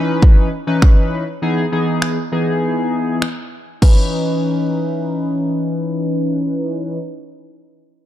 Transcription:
Already playing: E3 C#4 D#4 B4
0.22 kick
0.67 E3 C#4 D#4 B4
0.82 finger snap, kick
1.42 E3 B3 D#4 G#4
1.72 E3 B3 D#4 G#4
2.02 finger snap
2.32 E3 B3 D#4 G#4
3.22 finger snap
3.82 E3 C#4 D#4 B4, kick, crash

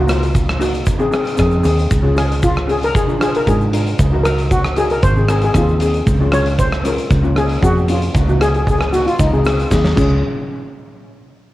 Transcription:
Already playing: C#2
0.08 A#3 D#4 F4, cross-stick, closed hi-hat, shaker
0.23 closed hi-hat, shaker
0.35 kick, closed hi-hat, shaker
0.49 cross-stick, shaker
0.59 A#3 D#4 F#4, closed hi-hat, shaker
0.74 closed hi-hat, shaker
0.86 G#1, kick, closed hi-hat, shaker
0.99 C4 D#4 G#4, shaker
1.11 C4 D#4 G#4, cross-stick, closed hi-hat, shaker
1.25 closed hi-hat, shaker
1.37 F2 C4 D#4 G#4, kick, cross-stick, closed hi-hat, shaker
1.51 shaker
1.63 D#2 C4 D#4 G#4, closed hi-hat, shaker
1.78 closed hi-hat, shaker
1.91 C#2, kick, closed hi-hat, shaker
2.03 C#4 F4 G#4
2.15 C#4 F4 G#4, cross-stick, closed hi-hat, shaker
2.32 closed hi-hat
2.43 F4, kick, closed hi-hat, shaker
2.56 cross-stick, shaker
2.67 C#4 F4 G#4, closed hi-hat, shaker
2.83 A#4, closed hi-hat, shaker
2.95 A#1 G#4, kick, closed hi-hat, shaker
3.07 D4 F4 A#4, shaker
3.20 D4 F4 G#4 C5, cross-stick, closed hi-hat, shaker
3.35 A#4, closed hi-hat
3.46 G#2 D4 F4 G#4 A#4, kick, closed hi-hat, shaker
3.61 shaker
3.72 D4 F4 A#4, closed hi-hat, shaker
3.87 closed hi-hat
3.99 C#2, kick, closed hi-hat, shaker
4.12 D#4 F#4 A#4
4.24 D#4 F#4 A#4, cross-stick, closed hi-hat, shaker
4.39 closed hi-hat
4.51 F#4, kick, closed hi-hat, shaker
4.64 cross-stick, shaker
4.76 D#4 F#4 G#4 A#4, closed hi-hat, shaker
4.90 A#4, closed hi-hat, shaker
5.02 G#1 C5, kick, closed hi-hat, shaker
5.16 C4 D#4 G#4, shaker
5.28 C4 D#4 G#4 A#4, cross-stick, closed hi-hat, shaker
5.42 G#4, closed hi-hat
5.54 D#2 C4 D#4 F4 G#4, kick, cross-stick, closed hi-hat, shaker
5.68 shaker
5.80 C4 D#4 G#4, closed hi-hat, shaker
5.94 closed hi-hat
6.06 C#2, kick, closed hi-hat, shaker
6.20 G#3 C#4 F4
6.32 G#3 C#4 F4 C#5, cross-stick, closed hi-hat, shaker
6.46 closed hi-hat
6.59 C5, kick, closed hi-hat, shaker
6.73 cross-stick, shaker
6.84 G#3 C#4 F4 A#4, closed hi-hat, shaker
6.98 closed hi-hat, shaker
7.11 C#2, kick, closed hi-hat, shaker
7.23 A#3 C#4 F4, shaker
7.35 A#3 C#4 D#4 G#4, cross-stick, closed hi-hat, shaker
7.49 closed hi-hat
7.61 F2 A#3 C#4 F#4 G#4, kick, closed hi-hat, shaker
7.77 shaker
7.88 A#3 C#4 F4, closed hi-hat, shaker
8.02 closed hi-hat
8.14 C#2, kick, closed hi-hat, shaker
8.27 A#3 D#4 F#4, shaker
8.40 A#3 D#4 G#4, cross-stick, closed hi-hat, shaker
8.49 G#4
8.54 G#4, closed hi-hat
8.62 G#4
8.67 G#4, kick, closed hi-hat, shaker
8.79 G#4, cross-stick, shaker
8.93 A#3 D#4 F#4, closed hi-hat, shaker
9.06 F4, closed hi-hat, shaker
9.19 C#2 D#4, kick, closed hi-hat, shaker
9.32 C4 D#4 G#4, shaker
9.45 C4 D#4 G#4, cross-stick, closed hi-hat, shaker
9.60 closed hi-hat
9.70 D#2 C4 D#4 G#4, kick, snare, shaker
9.84 snare, shaker
9.95 C#2 C#4 F4 G#4, kick, crash, shaker

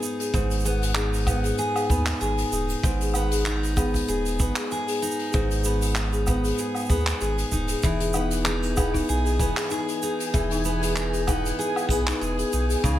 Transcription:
Already playing: G#2 B3 G#4
0.03 D#4, shaker
0.20 G#4, open hi-hat, shaker
0.34 G#1 G#2, kick, shaker
0.51 open hi-hat, shaker
0.60 shaker
0.65 B3 G#4, shaker
0.70 shaker
0.82 open hi-hat, shaker
0.95 D#4 G#4, clap, shaker
1.14 open hi-hat, shaker
1.17 open hi-hat
1.20 open hi-hat
1.24 B3, kick, open hi-hat, low woodblock, shaker
1.43 G#4, open hi-hat, shaker
1.58 G#4, shaker
1.75 G#4, open hi-hat, low woodblock, shaker
1.90 D#2 B3, kick, shaker
2.06 clap, open hi-hat, shaker
2.21 G#1 G#4, shaker
2.38 open hi-hat, shaker
2.51 D#1 D#4 G#4, shaker
2.69 open hi-hat, shaker
2.83 G#1 G#2, kick, shaker
3.01 G#4, open hi-hat, shaker
3.14 B3, low woodblock, shaker
3.31 G#4, open hi-hat, shaker
3.46 D#4, clap, shaker
3.63 open hi-hat, shaker
3.77 B3 G#4, kick, low woodblock, shaker
3.94 kick, open hi-hat, shaker
4.08 D#1 G#4, shaker
4.26 open hi-hat, shaker
4.39 G#1 B3, kick, shaker
4.56 G#4, clap, open hi-hat, shaker
4.71 G#4, shaker
4.88 G#4, open hi-hat, shaker
5.02 D#4, shaker
5.11 shaker
5.19 open hi-hat
5.32 G#1 G#2 G#4, kick, shaker
5.51 open hi-hat, shaker
5.63 B3 G#4, shaker
5.82 open hi-hat, shaker
5.95 D#4, clap, shaker
6.13 G#4, shaker
6.27 B3, kick, low woodblock, shaker
6.44 G#4, open hi-hat, shaker
6.48 open hi-hat
6.54 open hi-hat
6.58 G#4, shaker
6.75 open hi-hat, low woodblock, shaker
6.79 shaker
6.85 shaker
6.90 D#2 B3 G#4, kick, shaker
6.96 shaker
7.00 shaker
7.06 clap, open hi-hat, shaker
7.21 G#1 G#4, shaker
7.38 open hi-hat, shaker
7.52 D#1 D#4, kick, shaker
7.68 G#4, open hi-hat, shaker
7.82 E1 E3 G#4 G#5, kick, shaker
8.00 G#4, open hi-hat, shaker
8.13 B3 D#4, low woodblock, shaker
8.31 open hi-hat, shaker
8.44 D#4 G#4, clap, shaker
8.63 open hi-hat, shaker
8.75 B3 G#4, kick, low woodblock, shaker
8.94 D#4, kick, open hi-hat, shaker
9.09 B1 G#4, shaker
9.25 G#4, open hi-hat, shaker
9.39 E1 B3, kick, shaker
9.56 G#4, clap, open hi-hat, shaker
9.70 D#4 G#4, shaker
9.88 open hi-hat, shaker
10.02 D#4 G#4, shaker
10.20 open hi-hat, shaker
10.33 E1 E3 G#4, kick, shaker
10.50 D#4, open hi-hat, shaker
10.65 B3, shaker
10.82 G#4, open hi-hat, shaker
10.96 D#4, clap, shaker
11.13 G#4, open hi-hat, shaker
11.27 B3 D#4, kick, low woodblock, shaker
11.46 open hi-hat, shaker
11.59 G#4, shaker
11.76 open hi-hat, low woodblock, shaker
11.89 B1 B3 G#4, kick, shaker
12.07 D#4, clap, open hi-hat, shaker
12.21 E1 G#4, shaker
12.38 G#4, open hi-hat, shaker
12.53 B1 D#4, shaker
12.69 G#4, open hi-hat, shaker
12.84 C#2 C#3 D#4, kick, shaker

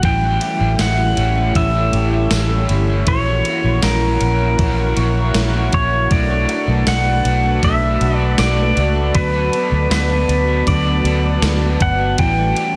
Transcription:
Already playing: A3 D4 F#4
0.03 A1 A2 E3 G3 C#4 E4 G4 A4 C#5 G5, kick, ride
0.07 E4
0.23 A3
0.39 C#4 E4 G4 E5, ride
0.45 G3
0.60 A1 A3
0.78 A1 E3 G3 C#4 F#5, snare, ride, tambourine
0.82 C#4 E4
0.99 A3
1.16 A1 C#4 E4, ride
1.22 G3
1.37 A3
1.54 A1 A2 E3 G3 C#4 E5, kick, ride
1.58 E4
1.75 A3
1.91 A1 C#4 E4 G4, ride
1.96 G3
2.13 A3
2.29 A1 E3 G3 C#4, snare, ride, tambourine
2.34 C#4 E4
2.50 A3
2.67 G1 C#4 E4, ride
2.73 G3
2.89 A3
3.05 A#1 A#2 E3 A#3 C#4 A#4 C#5 F#5, kick, ride
3.10 F#4
3.27 A#3
3.43 C#4 F#4, ride
3.49 A#3
3.64 A#1 A#3
3.81 A#1 E3 A#3 C#4 A#4, snare, ride, tambourine
3.86 C#4 F#4
4.03 A#3
4.19 A#1 C#4 F#4, ride
4.25 A#3
4.40 A#3
4.58 A#1 A#2 E3 A#3 C#4, kick, ride
4.62 F#4
4.78 A#3
4.94 A#1 C#4 F#4 C#6, ride
5.00 A#3
5.16 A#3
5.20 E5
5.34 A#1 E3 A#3 C#4, snare, ride, tambourine
5.38 C#4 F#4
5.53 A#3
5.72 A#1 C#4 F#4 C#5, kick, ride
5.78 A#3
5.91 A#3
6.11 B1 B2 F#3 A3 D4 F#4 B4 D5 A5, kick, ride
6.15 F#4
6.30 A3
6.48 D4 F#4, ride
6.54 A3
6.68 B1 A3
6.86 B1 F#3 A3 D4 D5 F#5, snare, ride, tambourine
6.90 D4 F#4
7.06 A3
7.24 B1 D4 F#4, ride
7.30 A3
7.44 A3
7.61 B1 B2 F#3 A3 D4 E5, kick, ride
7.66 F#4
7.82 A3
7.99 B1 D4 F#4, ride
8.06 A3
8.16 A3 D5
8.37 B1 F#3 A3 D4 D5, snare, ride, tambourine
8.41 D4 F#4
8.58 A3
8.75 C#2 D4 F#4 D5, ride
8.81 A3
8.96 A3
9.14 D2 D3 F#3 A3 B3 F#4 B4, kick, ride
9.34 B3
9.51 B3 F#4 A4, ride
9.57 A3
9.72 D2 B3
9.89 D2 D3 A3 D4 B4, snare, ride, tambourine
9.93 B3 F#4
10.10 B3
10.28 D2 B3 D4 F#4, ride
10.33 A3
10.48 B3
10.66 D2 D3 F#3 A3 B3 D5, kick, ride
10.70 F#4
10.86 B3
11.04 D2 B3 F#4 A4, ride
11.10 A3
11.25 B3
11.41 D2 D3 A3 D4, snare, ride, tambourine
11.46 B3 F#4
11.62 B3
11.79 G1 B3 F#4 B4 F#5, kick, ride
11.85 A3
12.00 B3
12.17 A1 A2 E3 G3 C#4 G4 C#5 E5 G5, kick, ride
12.21 E4
12.37 A3
12.55 C#4 E4 G4, ride
12.61 G3

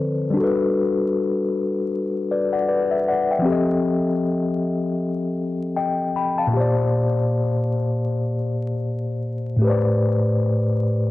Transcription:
Already playing: D3 F3 C4 A4 B4 C5
0.30 G3 D4
0.37 F#4 A4
0.44 B4
2.31 B4 D5
2.53 D5 F#5
2.68 B4 D5
2.91 E5
3.08 D5 F#5
3.31 E5 G5
3.39 F3 C4
3.45 G4 A4
3.52 D#5
5.76 D#5 G5
6.16 G5 B5
6.38 F5 A5
6.47 A#2 A#3
6.54 G4 C5
6.60 D5
9.57 A2 A3
9.62 G4 B4
9.67 C5 D5

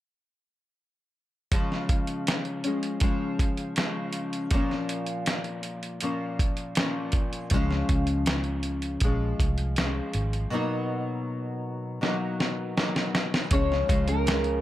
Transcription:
1.52 C#3 F3 G#3 C#4, kick, closed hi-hat
1.72 snare
1.89 kick, closed hi-hat
2.07 closed hi-hat
2.27 snare, closed hi-hat
2.45 closed hi-hat
2.64 F3 G#3 C#4, closed hi-hat
2.83 closed hi-hat
3.00 C#3 F3 G#3 C#4, kick, closed hi-hat
3.39 kick, closed hi-hat
3.57 closed hi-hat
3.76 C#3 F3 G#3 C#4, snare, closed hi-hat
4.13 closed hi-hat
4.33 closed hi-hat
4.51 A#2 F3 A#3 C#4, kick, closed hi-hat
4.71 snare
4.89 closed hi-hat
5.07 closed hi-hat
5.26 snare, closed hi-hat
5.44 closed hi-hat
5.63 closed hi-hat
5.83 closed hi-hat
6.01 A#2 F3 A#3 C#4, closed hi-hat
6.39 kick, closed hi-hat
6.57 closed hi-hat
6.75 A#2 F3 A#3 C#4, snare, closed hi-hat
7.12 kick, closed hi-hat
7.33 closed hi-hat
7.50 C#2 C#3 F3 G#3, kick, closed hi-hat
7.55 C#4
7.71 snare
7.89 C#2, kick, closed hi-hat
8.07 closed hi-hat
8.26 snare, closed hi-hat
8.44 closed hi-hat
8.63 closed hi-hat
8.82 closed hi-hat
9.00 A#1 F3 G#3, kick, closed hi-hat
9.05 C#4
9.39 C2, kick, closed hi-hat
9.58 closed hi-hat
9.76 F3 G#3 C#4, snare, closed hi-hat
10.14 G#1, closed hi-hat
10.33 closed hi-hat
10.50 B2 F#3 A#3 D#4
12.01 B2 F#3 A#3 D#4, snare
12.40 snare
12.77 B2 F#3 A#3 D#4, snare
12.96 snare
13.15 snare
13.34 snare
13.51 C#2 C#3 F3 G#3 C#4 C#5, kick, closed hi-hat
13.72 snare
13.88 C#2 C#3 F3 G#3 C#4, kick, closed hi-hat
14.08 F3 G#3 C#4 A#4, closed hi-hat
14.26 C#3 F3 G#3 C#4, snare, closed hi-hat
14.44 closed hi-hat

